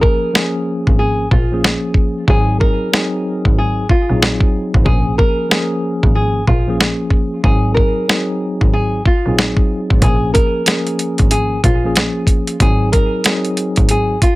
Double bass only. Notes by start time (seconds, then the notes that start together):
0.87 G#1
1.31 A#1
2.28 G#1
3.45 G#1
4.09 A#1
4.74 G#1
4.86 A#1
6.03 G#1
6.48 A#1
7.44 G#1
8.61 G#1
9.26 A#1
9.90 G#1
10.02 A#1
11.20 G#1
11.64 A#1
12.60 G#1
13.77 G#1